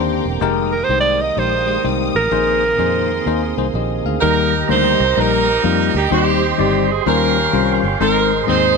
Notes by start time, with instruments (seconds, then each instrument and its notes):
Already playing: fingered electric bass D#2, tonewheel organ D3 A#3 C4 G4, tine electric piano A#3 D4 G4 C5, string section G5 A#5 C6 D6
0.25 fingered electric bass E1
0.41 fingered electric bass F1, tonewheel organ D#3 G#3, tine electric piano G#3 D#4 G4 A#4, string section F5 D#6
0.72 alto saxophone A#4
0.84 alto saxophone C5
0.89 fingered electric bass C2, tine electric piano G#3 D#4 G4 C5
1.00 alto saxophone D5
1.21 alto saxophone D#5
1.37 fingered electric bass A#1, tine electric piano G#3 D#4 G4 C5, alto saxophone C5
1.67 tine electric piano G#3 D#4 G4 C5
1.84 fingered electric bass C2, tine electric piano G#3 D#4 G4 C5
2.15 fingered electric bass A1, alto saxophone A#4
2.31 fingered electric bass A#1, tine electric piano A#2 A#3 D#4 G#4 C5, tonewheel organ D#3 A#3 C4 G#4, string section C6
2.78 fingered electric bass F2, tine electric piano A#3 D#4 G#4 C5
3.26 fingered electric bass D#2, tine electric piano A#3 D#4 G#4 C5
3.57 fingered electric bass C2, tine electric piano A#3 D#4 G#4 C5
3.74 fingered electric bass A#1, tine electric piano G4 D#5
4.05 fingered electric bass D2, tine electric piano G#4 F5
4.21 fingered electric bass D#2, tine electric piano D#3 G3 A#3 D#4 A#4, saxophone section D#4 G4 A#4, tonewheel organ G4 A#4 D#5 A#5
4.68 fingered electric bass D2, tine electric piano G3 A#3 D#4 C5, saxophone section D#4 G4 C5
5.00 fingered electric bass C2
5.16 fingered electric bass A#1, tine electric piano G3 A#3 D#4 A#4, saxophone section D#4 G4 A#4
5.64 fingered electric bass F2, tine electric piano G3 A#3 D#4 F4, saxophone section A#4
5.94 fingered electric bass D2, saxophone section G4
6.11 fingered electric bass D#2, tine electric piano D#3 G3 C4 D#4 C5, saxophone section C4 D#4 G4, tonewheel organ G4 C5 C6
6.58 fingered electric bass G1, tine electric piano G3 C4 D#4 D5, saxophone section G4
6.91 saxophone section G#4
7.06 fingered electric bass D#2, tine electric piano D#3 G3 C#4 F4 C5, saxophone section C#4 G4 A#4, tonewheel organ C#5 F5
7.53 fingered electric bass C2, tine electric piano G3 C#4 F4 C5
7.83 fingered electric bass G1
8.00 fingered electric bass G#1, tine electric piano G#2 G#3 C4 D#4 C5, saxophone section D#4 A#4, tonewheel organ G#4 C5 D#5
8.47 fingered electric bass D#2, tine electric piano G#3 C4 D#4 D#5, saxophone section D#4 G#4 C5